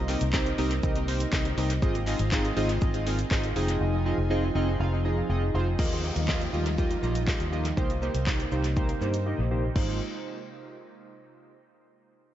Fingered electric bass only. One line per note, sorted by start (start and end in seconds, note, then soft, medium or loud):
0.00 0.15 C2 loud
0.21 0.52 C2 medium
0.59 0.79 C2 loud
0.83 1.24 C2 loud
1.33 1.53 C2 loud
1.58 1.78 C2 loud
1.82 2.13 G#1 loud
2.19 2.50 G#1 medium
2.57 2.77 G#1 medium
2.82 3.23 G#1 loud
3.31 3.52 G#1 loud
3.56 3.76 F1 loud
3.81 4.12 F1 loud
4.18 4.49 F1 loud
4.55 4.76 F1 medium
4.80 5.21 F1 loud
5.29 5.50 F1 loud
5.54 5.75 F1 loud
5.79 6.10 D#2 medium
6.16 6.47 D#2 medium
6.53 6.94 D#2 medium
7.03 7.34 A#1 medium
7.40 7.71 D#2 medium
7.77 8.08 C2 medium
8.14 8.45 C2 medium
8.52 8.93 C2 medium
9.01 9.32 G2 medium
9.39 9.69 A#1 medium
9.76 9.99 G#1 loud